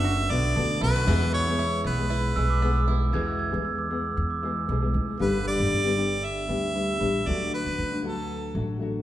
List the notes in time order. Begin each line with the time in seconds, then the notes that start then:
Already playing: F#1 D3 B3 D4 F#4 D5 E5
0.04 F#4
0.30 B1 D3 B3 D4 F#4 D5
0.56 D2 D3 B3 D4 F#4
0.81 B1 D3 B3 D4 E4 F#4 B4
0.96 F#4
1.05 E2 B2 E3 G#3 B3 E4 G#4
1.09 E5
1.33 B3 C#5
1.47 E3 G#3 B3 G#4
1.59 E4
1.84 B1 B3 B4
1.98 E3 G#3 B3 G#4
2.10 E4
2.35 B1 E3 G#3 B3 G#4 E6
2.50 D6
2.62 E3 G#3 B3 G#4 E6
2.87 E3 G#3 B3 E4 G#4
3.12 E2 B2 E3 G#3 B3 G#4 G#6
3.27 E6
3.39 G#6
3.52 E2 E3 G#3 B3 G#4
3.65 E6
3.76 D6 E6
3.89 E3 G#3 B3 G#4 E6
4.17 E2 E6
4.30 D6
4.42 E3 G#3 B3 G#4 E6
4.69 B1 E3 G#3 B3 G#4
4.82 E3 G#3 B3 G#4
4.94 D2
5.19 G1 G2 D3 G3 B3 D4 G4 B4
5.47 D5
5.60 G1
5.72 G1
5.84 G3 B3 D4 G4
5.95 G3 B3 D4 G4
6.24 E5
6.47 D2 G3 B3 D4 G4
6.73 G3 B3 D4 G4
6.99 A1 G3 B3 D4 G4
7.26 D2 D3 F#3 A3 D4 F#4 D5
7.54 B4
7.66 D2
7.78 D2
7.92 A3 D4 F#4
8.02 F#3 A3 D4 F#4
8.06 A4
8.54 A1 F#3 A3 D4 F#4
8.79 F#3 A3 D4 F#4